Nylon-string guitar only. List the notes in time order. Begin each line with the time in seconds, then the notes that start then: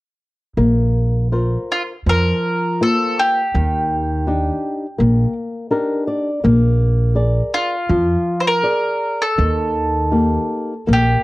0.57 A#3
1.32 F4 A#4 C5
2.07 F3
2.81 A#3 F4 C5
3.54 D#3
4.27 D4 D#4 G4
4.98 A#3
5.70 D4 D#4 G4 A#4
6.07 D5
6.44 A#3
7.15 G#4 A#4 D5
7.89 F3
8.63 G#4 A#4 D5
9.37 D#3
10.11 A#3 D#4 G4
10.87 A#3